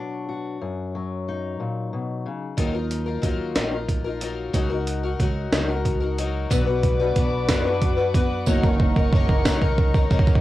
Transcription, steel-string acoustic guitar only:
Already playing: B2 F#3 D4 F#4 B4
0.29 F#4
0.61 F#2
0.95 F#3
1.29 D#4
1.60 A#2
1.93 B2
2.26 C#3

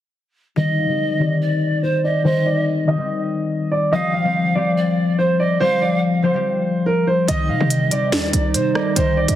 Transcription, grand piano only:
0.57 D#5
1.20 D5
1.83 C5
2.04 D5
2.25 C5
2.46 D5
2.88 D#5
3.71 D5
3.93 D#5
4.14 F5
4.55 D5
5.18 C5
5.40 D5
5.60 C5
5.82 D5
6.24 C5
6.86 A#4
7.07 C5
7.28 D#5
7.49 F5
7.91 D5
8.54 C5
8.75 D5
8.96 C5
9.17 D5

